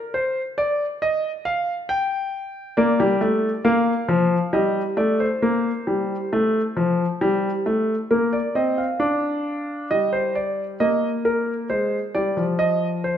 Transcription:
0.14 0.41 C5 medium
0.58 0.85 D5 medium
1.02 1.29 D#5 medium
1.45 1.72 F5 medium
1.89 2.75 G5 medium
2.77 2.99 A#3 medium
2.77 3.62 D5 medium
3.00 3.21 G3 medium
3.21 3.48 A3 medium
3.65 3.92 A#3 medium
3.65 4.50 F5 medium
4.09 4.36 F3 medium
4.53 4.80 G3 medium
4.53 4.81 D#5 medium
4.97 5.25 A3 medium
4.97 5.19 D5 medium
5.20 8.07 C5 medium
5.42 5.70 A#3 medium
5.87 6.15 G3 medium
6.33 6.60 A3 medium
6.77 7.04 F3 medium
7.21 7.49 G3 medium
7.66 7.94 A3 medium
8.11 8.39 A#3 medium
8.11 8.32 A#4 medium
8.33 8.55 D5 medium
8.55 8.83 C4 medium
8.55 8.77 D#5 medium
8.78 9.87 F5 medium
9.00 9.87 D4 medium
9.91 10.78 G3 medium
9.91 10.12 D#5 medium
10.13 10.35 C5 medium
10.35 10.63 D5 medium
10.80 11.67 A#3 medium
10.80 11.08 D#5 medium
11.25 11.53 A#4 medium
11.70 11.98 G#3 medium
11.70 11.98 C5 medium
12.15 12.37 G3 medium
12.15 12.42 D5 medium
12.37 13.18 F3 medium
12.59 12.87 D#5 medium
13.04 13.18 C5 medium

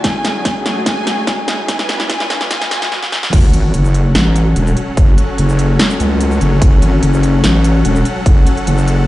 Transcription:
0.00 0.70 E4 medium
0.00 0.70 F#5 medium
0.00 0.58 G#5 medium
0.00 snare medium
0.00 closed hi-hat medium
0.00 riser medium
0.04 1.67 F#2 medium
0.04 1.67 F#3 medium
0.04 1.67 A3 medium
0.04 2.34 F#4 medium
0.04 1.67 G#4 medium
0.04 kick loud
0.15 2.35 A3 medium
0.25 snare medium
0.25 closed hi-hat medium
0.39 2.31 G#5 medium
0.45 kick loud
0.45 snare medium
0.45 closed hi-hat medium
0.66 0.85 G#5 medium
0.66 snare medium
0.66 closed hi-hat medium
0.86 1.40 G#5 loud
0.86 kick loud
0.86 snare medium
0.86 closed hi-hat medium
1.07 snare medium
1.07 closed hi-hat medium
1.27 kick loud
1.27 snare medium
1.27 closed hi-hat medium
1.48 1.67 G#5 medium
1.48 snare medium
1.48 closed hi-hat medium
1.68 2.91 B2 medium
1.68 2.91 F#3 medium
1.68 2.92 D4 medium
1.68 2.91 D4 medium
1.68 2.91 B4 medium
1.68 2.08 G#5 loud
1.68 kick loud
1.68 snare medium
1.68 closed hi-hat medium
1.79 snare medium
1.89 snare loud
1.89 closed hi-hat medium
1.93 2.92 B4 medium
1.93 2.92 F#5 medium
2.00 snare medium
2.10 2.49 G#5 loud
2.10 kick medium
2.10 snare loud
2.10 closed hi-hat medium
2.20 snare medium
2.30 snare loud
2.30 closed hi-hat soft
2.41 snare medium
2.51 2.70 G#5 loud
2.51 kick loud
2.51 snare loud
2.51 closed hi-hat medium
2.61 snare medium
2.71 2.90 G#5 loud
2.71 snare loud
2.71 closed hi-hat medium
2.82 snare medium
2.92 snare medium
3.03 snare medium
3.12 snare medium
3.23 snare medium
3.33 3.52 F#1 loud
3.33 9.07 F#3 medium
3.33 9.07 C#4 medium
3.33 9.07 A4 medium
3.33 9.07 F#5 medium
3.33 kick loud
3.33 closed hi-hat medium
3.33 crash loud
3.33 sub drop medium
3.53 3.72 G#1 loud
3.53 closed hi-hat medium
3.64 9.07 A4 medium
3.74 4.14 F#1 medium
3.74 closed hi-hat medium
3.85 shaker medium
3.94 closed hi-hat medium
4.15 4.55 A1 medium
4.15 snare loud
4.15 closed hi-hat medium
4.36 closed hi-hat medium
4.56 4.75 E1 loud
4.56 closed hi-hat medium
4.67 shaker medium
4.77 closed hi-hat medium
4.97 5.16 F#1 loud
4.97 kick loud
4.97 closed hi-hat medium
5.18 closed hi-hat medium
5.38 5.78 F#1 medium
5.38 closed hi-hat medium
5.49 shaker medium
5.59 closed hi-hat medium
5.79 snare loud
5.79 closed hi-hat medium
5.90 shaker medium
6.00 6.40 C#2 loud
6.00 closed hi-hat medium
6.00 shaker medium
6.21 closed hi-hat medium
6.31 shaker medium
6.41 6.60 F#1 loud
6.41 closed hi-hat medium
6.62 6.81 F#1 loud
6.62 kick loud
6.62 closed hi-hat medium
6.82 7.01 G#1 loud
6.82 closed hi-hat medium
7.03 7.42 F#1 medium
7.03 closed hi-hat medium
7.14 shaker medium
7.23 closed hi-hat medium
7.44 7.83 A1 loud
7.44 snare loud
7.44 closed hi-hat medium
7.64 closed hi-hat medium
7.85 8.04 E1 loud
7.85 closed hi-hat medium
7.96 shaker medium
8.05 closed hi-hat medium
8.26 8.45 F#1 loud
8.26 kick loud
8.26 closed hi-hat medium
8.47 closed hi-hat medium
8.57 closed hi-hat soft
8.67 9.07 F#1 medium
8.67 closed hi-hat medium
8.78 shaker medium
8.88 closed hi-hat medium

